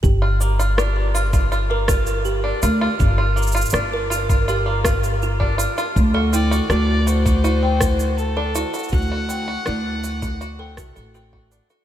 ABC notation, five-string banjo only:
X:1
M:4/4
L:1/16
Q:1/4=81
K:Gdor
V:1 name="Five-string banjo"
z F B, F D2 F F F B, F3 D F F- | F F B, F D2 F F F B, F3 D F F | z ^F C F D2 F F F C F3 D F F- | ^F F C F D2 F F F C A, F C F D F |]